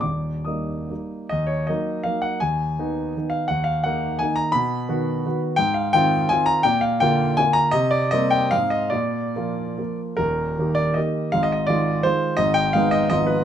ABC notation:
X:1
M:3/4
L:1/8
Q:1/4=163
K:Eb
V:1 name="Grand piano"
[dd']2 [ee']2 z2 | [K:Ebm] e d e2 f g | a4- a f | g f g2 a b |
=b4- b z | [K:Eb] g f g2 a b | g f g2 a b | e d e g f e |
d4- d z | B3 d e2 | (3f e e d2 c2 | e g f e e _c |]
V:2 name="Grand piano"
[E,,,E,,]2 [G,B,E]2 [G,B,E]2 | [K:Ebm] E,,2 [G,B,E]2 [G,B,E]2 | E,,2 [E,CE]2 [E,CE]2 | E,,2 [E,B,E]2 [E,B,E]2 |
=B,,2 [^D,=B,^F]2 [D,B,F]2 | [K:Eb] A,,2 [E,CF]2 [E,CF]2 | B,,2 [D,B,F]2 [D,B,F]2 | C,2 [G,B,C]2 [A,,A,C]2 |
B,,2 [F,B,F]2 [F,B,F]2 | [E,,,E,,]2 [E,B,G]2 [E,B,G]2 | [A,,,A,,]2 [E,A,F]2 [E,A,F]2 | [A,,,A,,]2 [A,_CE]2 [A,,,A,,F,CF]2 |]